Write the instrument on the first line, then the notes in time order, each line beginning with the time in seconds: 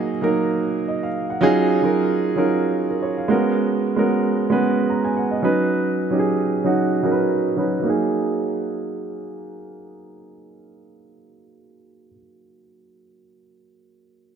grand piano
Already playing: F#3 A#3 D#4 G#4
0.21 F#3 A#3 D#4 A#4
0.88 D#5
1.03 F5
1.30 F#5
1.41 F#3 C#4 D#4 F4 G#4
1.82 F#3 C#4 D#4 F4 A#4
2.36 F#3 C#4 D#4 F4 A#4
2.91 A#4
3.03 C#5
3.18 F5
3.28 G#3 B3 C#4 F#4 A#4
3.96 G#3 B3 C#4 F#4 A#4
4.50 G#3 B3 C#4 F#4 B4
4.90 A#5
5.05 G#5
5.17 F#5
5.31 D#5
5.42 F#3 C#4 D#4 B4
6.10 F#3 C#4 D#4 G4
6.19 G#4
6.64 F#3 C#4 D#4 F#4
7.03 F#3 C#4 D#4 A#4
7.12 B4
7.56 F#3 C#4 D#4 B4
7.80 F#3 A#3
7.86 D#4 G#4